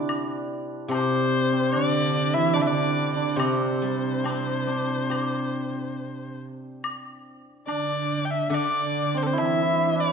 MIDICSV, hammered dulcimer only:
0, 0, Header, 1, 2, 480
1, 0, Start_track
1, 0, Tempo, 820793
1, 50, Time_signature, 4, 2, 24, 8
1, 1970, Tempo, 863309
1, 3890, Tempo, 845070
1, 5765, End_track
2, 0, Start_track
2, 0, Title_t, "Hammered dulcimer"
2, 0, Program_c, 0, 15
2, 0, Note_on_c, 0, 60, 60
2, 0, Note_on_c, 0, 62, 43
2, 0, Note_on_c, 0, 64, 74
2, 521, Note_off_c, 0, 60, 0
2, 524, Note_on_c, 0, 60, 64
2, 888, Note_off_c, 0, 60, 0
2, 891, Note_on_c, 0, 60, 62
2, 1005, Note_off_c, 0, 62, 0
2, 1007, Note_on_c, 0, 62, 72
2, 1366, Note_off_c, 0, 64, 0
2, 1368, Note_on_c, 0, 64, 79
2, 1480, Note_off_c, 0, 62, 0
2, 1482, Note_on_c, 0, 62, 76
2, 1554, Note_off_c, 0, 62, 0
2, 1556, Note_on_c, 0, 62, 77
2, 1844, Note_off_c, 0, 62, 0
2, 1846, Note_on_c, 0, 62, 64
2, 1966, Note_off_c, 0, 60, 0
2, 1968, Note_on_c, 0, 60, 65
2, 3330, Note_off_c, 0, 64, 0
2, 3927, Note_off_c, 0, 62, 0
2, 4200, Note_off_c, 0, 60, 0
2, 4373, Note_on_c, 0, 62, 66
2, 4852, Note_off_c, 0, 62, 0
2, 4854, Note_on_c, 0, 62, 67
2, 5208, Note_on_c, 0, 60, 66
2, 5272, Note_off_c, 0, 60, 0
2, 5274, Note_on_c, 0, 60, 63
2, 5315, Note_on_c, 0, 64, 83
2, 5357, Note_off_c, 0, 64, 0
2, 5360, Note_on_c, 0, 64, 57
2, 5396, Note_off_c, 0, 64, 0
2, 5398, Note_on_c, 0, 64, 61
2, 5438, Note_off_c, 0, 64, 0
2, 5440, Note_on_c, 0, 64, 51
2, 5480, Note_off_c, 0, 64, 0
2, 5482, Note_on_c, 0, 64, 64
2, 5531, Note_off_c, 0, 64, 0
2, 5534, Note_on_c, 0, 64, 54
2, 5555, Note_off_c, 0, 64, 0
2, 5557, Note_on_c, 0, 64, 65
2, 5617, Note_off_c, 0, 64, 0
2, 5620, Note_on_c, 0, 64, 59
2, 5666, Note_off_c, 0, 62, 0
2, 5669, Note_on_c, 0, 62, 63
2, 5765, Note_off_c, 0, 60, 0
2, 5765, Note_off_c, 0, 62, 0
2, 5765, Note_off_c, 0, 64, 0
2, 5765, End_track
0, 0, End_of_file